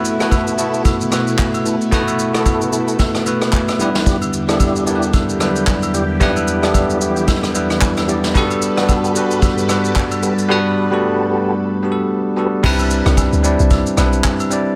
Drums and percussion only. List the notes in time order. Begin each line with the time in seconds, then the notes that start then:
0.05 shaker
0.20 cross-stick, shaker
0.31 kick, high agogo, shaker
0.47 shaker
0.58 shaker
0.74 shaker
0.85 kick, high agogo, shaker
1.01 shaker
1.12 cross-stick, high agogo, shaker
1.27 shaker
1.38 kick, clap, low woodblock, shaker
1.54 high agogo, shaker
1.66 shaker
1.81 shaker
1.92 kick, shaker
2.08 high agogo, shaker
2.19 shaker
2.35 cross-stick, shaker
2.46 kick, high agogo, shaker
2.61 shaker
2.73 shaker
2.88 shaker
2.99 kick, snare, high agogo, shaker
3.15 cross-stick, shaker
3.26 high agogo, shaker
3.42 cross-stick, shaker
3.52 kick, clap, low woodblock, shaker
3.68 cross-stick, high agogo, shaker
3.80 shaker
3.95 snare
4.06 kick, shaker
4.22 high agogo, shaker
4.33 shaker
4.49 cross-stick, shaker
4.60 kick, high agogo, shaker
4.76 shaker
4.87 shaker
5.02 shaker
5.13 kick, high agogo, shaker
5.29 shaker
5.40 cross-stick, high agogo, shaker
5.56 shaker
5.67 kick, clap, low woodblock, shaker
5.83 high agogo, shaker
5.94 shaker
6.21 kick, shaker
6.36 high agogo, shaker
6.48 shaker
6.63 cross-stick, shaker
6.74 kick, high agogo, shaker
6.90 shaker
7.01 shaker
7.16 shaker
7.28 kick, snare, high agogo, shaker
7.43 cross-stick, shaker
7.55 high agogo, shaker
7.70 cross-stick, shaker
7.81 kick, clap, low woodblock, shaker
7.97 cross-stick, high agogo, shaker
8.09 shaker
8.24 snare, shaker
8.35 kick, shaker
8.51 high agogo, shaker
8.62 shaker
8.77 cross-stick, shaker
8.89 kick, high agogo, shaker
9.04 shaker
9.16 shaker
9.31 shaker
9.42 kick, high agogo, shaker
9.58 shaker
9.69 cross-stick, high agogo, shaker
9.84 shaker
9.95 kick, clap, low woodblock, shaker
10.11 high agogo, shaker
10.23 shaker
10.38 shaker
12.64 kick, crash
12.79 high agogo, shaker
12.91 shaker
13.06 cross-stick, shaker
13.17 kick, high agogo, low woodblock, shaker
13.33 shaker
13.44 shaker
13.59 shaker
13.71 kick, high agogo, shaker
13.86 shaker
13.97 cross-stick, high agogo, shaker
14.13 shaker
14.24 kick, clap, low woodblock, shaker
14.40 high agogo, shaker
14.51 shaker